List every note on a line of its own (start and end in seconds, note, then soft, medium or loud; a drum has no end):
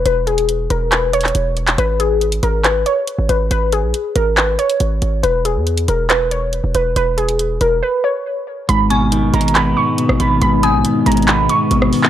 0.06 0.68 E1 loud
0.06 0.22 B4 medium
0.06 closed hi-hat medium
0.27 0.68 G#4 medium
0.27 closed hi-hat medium
0.38 closed hi-hat medium
0.49 closed hi-hat medium
0.70 1.32 E1 loud
0.70 0.87 A#4 medium
0.70 closed hi-hat medium
0.92 1.09 B4 medium
0.92 clap loud
0.92 closed hi-hat medium
1.13 1.74 C#5 medium
1.13 closed hi-hat medium
1.21 clap medium
1.21 closed hi-hat medium
1.28 closed hi-hat soft
1.35 1.76 E1 loud
1.35 closed hi-hat medium
1.57 closed hi-hat soft
1.57 open hi-hat medium
1.67 clap loud
1.67 closed hi-hat medium
1.78 2.40 G#1 loud
1.78 1.95 B4 loud
1.78 closed hi-hat medium
2.00 2.40 G#4 medium
2.00 closed hi-hat medium
2.21 closed hi-hat medium
2.32 closed hi-hat medium
2.43 2.84 G#1 loud
2.43 2.60 A#4 medium
2.43 closed hi-hat medium
2.64 2.81 B4 medium
2.64 clap loud
2.64 closed hi-hat medium
2.86 3.27 C#5 medium
2.86 closed hi-hat medium
3.07 closed hi-hat medium
3.19 3.29 G#1 loud
3.29 3.50 G#1 loud
3.29 3.46 B4 medium
3.29 closed hi-hat medium
3.51 3.85 G#1 loud
3.51 3.68 B4 medium
3.51 closed hi-hat medium
3.72 4.13 G#4 medium
3.72 closed hi-hat medium
3.83 3.93 A#1 loud
3.94 closed hi-hat medium
4.16 4.57 G#1 loud
4.16 4.32 A#4 medium
4.16 closed hi-hat medium
4.37 4.54 B4 medium
4.37 clap loud
4.37 closed hi-hat medium
4.59 5.20 C#5 medium
4.59 closed hi-hat medium
4.70 closed hi-hat medium
4.80 5.01 G#1 loud
4.80 closed hi-hat medium
5.02 5.23 G#1 loud
5.02 closed hi-hat medium
5.23 5.57 E1 loud
5.23 5.40 B4 loud
5.23 closed hi-hat medium
5.45 5.86 G#4 medium
5.45 closed hi-hat medium
5.56 5.87 E2 loud
5.67 closed hi-hat medium
5.77 closed hi-hat medium
5.88 6.61 E1 loud
5.88 6.05 A#4 medium
5.88 closed hi-hat medium
6.10 6.27 B4 loud
6.10 clap loud
6.10 closed hi-hat medium
6.31 6.72 C#5 medium
6.31 closed hi-hat medium
6.53 closed hi-hat medium
6.64 6.74 E1 loud
6.75 6.95 E1 loud
6.75 6.92 B4 medium
6.75 closed hi-hat medium
6.96 7.58 E1 loud
6.96 7.13 B4 medium
6.96 closed hi-hat medium
7.18 7.58 G#4 medium
7.18 closed hi-hat medium
7.29 closed hi-hat medium
7.39 closed hi-hat medium
7.61 7.82 E1 loud
7.61 7.78 A#4 medium
7.61 closed hi-hat medium
7.83 7.99 B4 medium
8.04 8.65 C#5 medium
8.69 9.31 G#1 loud
8.69 9.76 G#2 medium
8.69 12.10 G#3 medium
8.69 12.10 B3 medium
8.69 12.10 D#4 medium
8.69 12.10 B4 medium
8.69 8.86 B5 loud
8.69 closed hi-hat medium
8.90 9.97 B2 medium
8.90 9.31 G#5 medium
8.90 9.11 C#6 medium
8.90 closed hi-hat medium
9.12 10.19 D#3 medium
9.12 closed hi-hat medium
9.34 9.75 G#1 loud
9.34 10.42 G#3 medium
9.34 9.50 A#5 medium
9.34 closed hi-hat medium
9.41 closed hi-hat medium
9.48 closed hi-hat medium
9.55 10.63 B3 medium
9.55 9.72 B5 medium
9.55 clap loud
9.55 closed hi-hat medium
9.77 10.41 G#2 medium
9.77 10.17 C#6 medium
9.98 10.62 B2 medium
9.98 closed hi-hat medium
10.09 10.19 G#1 loud
10.09 cross-stick loud
10.20 10.41 G#1 loud
10.20 10.83 D#3 medium
10.20 10.37 B5 medium
10.20 closed hi-hat medium
10.42 10.75 G#1 loud
10.42 11.48 G#2 loud
10.42 10.58 B5 medium
10.42 closed hi-hat medium
10.63 11.70 B2 medium
10.63 11.04 G#5 medium
10.63 10.84 D#6 medium
10.63 closed hi-hat medium
10.74 10.84 A#1 loud
10.85 11.91 D#3 medium
10.85 closed hi-hat medium
11.06 11.48 G#1 loud
11.06 12.10 G#3 loud
11.06 11.23 A#5 medium
11.06 closed hi-hat medium
11.12 closed hi-hat medium
11.17 closed hi-hat medium
11.22 closed hi-hat soft
11.28 12.10 B3 medium
11.28 11.45 B5 medium
11.28 clap loud
11.28 closed hi-hat medium
11.49 12.10 G#2 medium
11.49 12.10 C#6 medium
11.49 closed hi-hat medium
11.71 11.92 G#1 loud
11.71 12.10 B2 loud
11.71 closed hi-hat medium
11.82 cross-stick medium
11.93 12.10 D#3 medium
11.93 open hi-hat medium
12.03 clap loud